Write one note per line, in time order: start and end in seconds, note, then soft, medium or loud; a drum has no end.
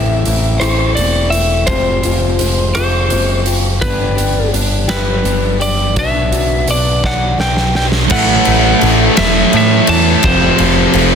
0.00 0.24 A1 medium
0.00 0.25 A2 medium
0.00 0.24 E3 medium
0.00 0.25 A3 soft
0.00 0.26 C4 soft
0.00 0.27 E4 medium
0.00 0.64 E5 medium
0.26 0.60 A1 medium
0.26 0.95 E3 medium
0.26 0.62 A3 medium
0.26 0.60 C4 medium
0.26 0.59 E4 medium
0.26 closed hi-hat medium
0.60 0.95 A1 medium
0.60 0.96 A3 soft
0.60 0.97 C4 soft
0.60 0.98 E4 medium
0.60 0.95 C5 medium
0.60 cross-stick medium
0.60 closed hi-hat medium
0.95 1.65 E1 medium
0.95 1.66 E3 medium
0.95 1.33 A3 medium
0.95 1.32 C4 medium
0.95 1.31 E4 medium
0.95 1.33 D5 medium
0.95 closed hi-hat medium
1.30 1.67 A3 soft
1.30 1.67 C4 medium
1.30 1.66 E4 medium
1.30 1.69 E5 medium
1.30 closed hi-hat soft
1.67 2.02 F1 medium
1.67 2.39 F2 medium
1.67 2.40 C3 medium
1.67 2.04 F3 medium
1.67 2.03 G#3 medium
1.67 2.02 C4 medium
1.67 2.01 F4 medium
1.67 2.74 C5 medium
1.67 kick medium
1.67 closed hi-hat medium
2.03 2.39 F1 medium
2.03 2.37 F3 soft
2.03 2.38 G#3 medium
2.03 2.39 C4 medium
2.03 2.40 F4 medium
2.03 closed hi-hat soft
2.38 2.75 F1 medium
2.38 2.76 F3 medium
2.38 2.76 G#3 medium
2.38 2.75 C4 medium
2.38 2.74 F4 medium
2.38 closed hi-hat soft
2.75 3.10 F1 medium
2.75 3.08 F3 soft
2.75 3.09 G#3 medium
2.75 3.09 C4 medium
2.75 3.10 F4 medium
2.75 3.52 C5 medium
2.75 cross-stick medium
2.75 closed hi-hat medium
3.09 3.80 F#1 medium
3.09 3.46 F3 medium
3.09 3.45 G#3 medium
3.09 3.44 C4 medium
3.09 3.44 F4 medium
3.09 closed hi-hat soft
3.45 3.81 F3 soft
3.45 3.81 G#3 medium
3.45 3.80 C4 medium
3.45 3.80 F4 medium
3.45 closed hi-hat soft
3.80 4.17 G1 medium
3.80 4.53 G2 medium
3.80 4.54 D3 medium
3.80 4.17 G3 medium
3.80 4.16 B3 medium
3.80 4.16 D4 medium
3.80 4.14 G4 medium
3.80 4.50 B4 medium
3.80 kick medium
3.80 closed hi-hat medium
4.15 4.53 G1 medium
4.15 4.50 G3 soft
4.15 4.52 B3 medium
4.15 4.53 D4 medium
4.15 4.53 G4 medium
4.15 closed hi-hat soft
4.52 4.87 G1 medium
4.52 4.89 G3 medium
4.52 4.88 B3 medium
4.52 4.87 D4 medium
4.52 4.86 G4 medium
4.52 closed hi-hat medium
4.88 5.23 G1 medium
4.88 5.22 G3 medium
4.88 5.23 B3 medium
4.88 5.24 D4 medium
4.88 5.24 G4 medium
4.88 5.57 B4 medium
4.88 snare medium
4.88 closed hi-hat medium
5.23 5.97 G1 medium
5.23 5.61 G3 medium
5.23 5.60 B3 medium
5.23 5.59 D4 medium
5.23 5.58 G4 medium
5.23 closed hi-hat medium
5.60 5.95 G3 soft
5.60 5.95 B3 medium
5.60 5.95 D4 medium
5.60 5.94 G4 medium
5.60 5.95 D5 medium
5.60 closed hi-hat medium
5.96 6.31 B1 medium
5.96 6.68 B2 medium
5.96 6.66 F#3 medium
5.96 6.33 B3 medium
5.96 6.32 D4 medium
5.96 6.31 F#4 medium
5.96 6.70 E5 medium
5.96 kick medium
5.96 closed hi-hat medium
6.32 6.66 B1 medium
6.32 6.67 B3 soft
6.32 6.68 D4 medium
6.32 6.68 F#4 medium
6.32 closed hi-hat medium
6.67 7.02 B1 medium
6.67 7.37 F#3 medium
6.67 7.05 B3 medium
6.67 7.04 D4 medium
6.67 7.40 F#4 medium
6.67 7.03 D5 medium
6.67 closed hi-hat medium
7.04 7.38 B1 medium
7.04 7.38 B3 soft
7.04 7.39 D4 medium
7.04 7.81 D5 medium
7.04 7.38 F#5 medium
7.04 kick medium
7.04 snare soft
7.38 8.07 B1 medium
7.38 8.08 F#3 medium
7.38 7.77 B3 medium
7.38 7.75 D4 medium
7.38 7.75 G5 medium
7.38 snare medium
7.57 snare medium
7.75 8.10 B3 soft
7.75 8.09 D4 medium
7.75 7.86 G5 medium
7.75 snare medium
7.92 snare medium
8.10 8.37 A1 loud
8.10 9.86 A2 medium
8.10 9.87 E3 medium
8.10 9.87 A3 loud
8.10 9.14 F#5 loud
8.10 kick loud
8.10 crash loud
8.45 8.73 A1 medium
8.45 ride medium
8.81 9.08 A1 medium
8.81 ride medium
9.17 9.44 E1 medium
9.17 9.54 E5 loud
9.17 snare loud
9.17 ride loud
9.53 9.79 A2 medium
9.53 9.88 E5 loud
9.53 ride medium
9.87 10.14 E2 loud
9.87 10.23 A2 medium
9.87 10.23 E3 medium
9.87 10.22 A3 medium
9.87 10.26 A5 loud
9.87 ride medium
10.23 10.50 F1 loud
10.23 11.15 F2 medium
10.23 11.15 C3 medium
10.23 11.15 F3 loud
10.23 11.15 C5 loud
10.23 kick loud
10.23 ride loud
10.58 10.85 F1 medium
10.58 ride medium
10.94 11.15 F1 medium
10.94 ride medium